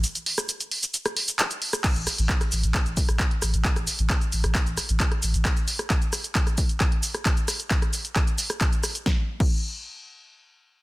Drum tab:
CC |----------------|x---------------|----------------|----------------|
HH |xxo-xxoxxxoxxxox|xxoxxxoxxxoxxxox|xxoxxxoxxxoxxxox|xxoxxxoxxxoxxxox|
SH |xx-xxx-xxx-xxx-x|xxxxxxxxxxxxx-xx|xxxxxxxxxxxxx-xx|xxxxxxxxxxxxx-xx|
CP |------------x---|x---x---x---x---|x---x---x---x---|x---x---x---x---|
SD |---r-----r-----r|--r--r--r--r--r-|-r--r--r--r--r--|r--r--r--r--r--r|
BD |----------------|o---o---o-o-o---|o---o---o---o---|o---o---o-o-o---|

CC |----------------|---x------------|
HH |xxoxxxoxxxoxxxox|----------------|
SH |xxxxxxxxxxxxxxxx|----------------|
CP |x---x---x---x---|----------------|
SD |--r--r--r--r--r-|o---------------|
BD |o---o---o---o---|o--o------------|